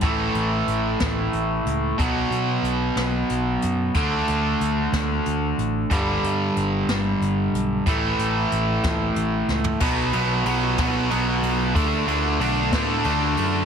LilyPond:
<<
  \new Staff \with { instrumentName = "Overdriven electric guitar" } { \clef bass \time 6/8 \key a \mixolydian \tempo 4. = 61 <a, e a>2. | <b, fis b>2. | <d a d'>2. | <g, d g>2. |
<a, e a>2. | \key b \minor <b, fis b>8 <b, fis b>8 <b, fis b>8 <b, fis b>8 <b, fis b>4 | <d a d'>8 <d a d'>8 <d a d'>8 <d a d'>8 <d a d'>4 | }
  \new Staff \with { instrumentName = "Picked electric bass" } { \clef bass \time 6/8 \key a \mixolydian a,,8 a,,8 a,,8 a,,8 a,,8 cis,8 | b,,8 b,8 b,,8 b,,8 b,,8 fis,8 | d,8 d,8 d,8 d,8 d,8 a,,8 | g,,8 g,8 g,,8 g,,8 g,,8 b,,8 |
a,,8 a,,8 a,,8 a,,8 a,,8 cis,8 | \key b \minor b,,8 b,,8 b,,8 b,,8 b,,8 b,,8 | d,8 d,8 b,,8 a,8 d,8 fis,8 | }
  \new DrumStaff \with { instrumentName = "Drums" } \drummode { \time 6/8 <hh bd>8 hh8 hh8 <hh bd sn>8 hh8 hh8 | <hh bd>8 hh8 hh8 <hh sn>8 hh8 hh8 | <hh bd>8 hh8 hh8 <hh bd sn>8 hh8 hh8 | <hh bd>8 hh8 hh8 <hh sn>8 hh8 hh8 |
<hh bd>8 hh8 hh8 <hh bd sn>8 hh8 sn16 tomfh16 | <cymc bd>8 cymr8 cymr8 <bd cymr sn>8 cymr8 cymr8 | <bd cymr>8 cymr8 cymr8 <bd cymr sn>8 cymr8 cymr8 | }
>>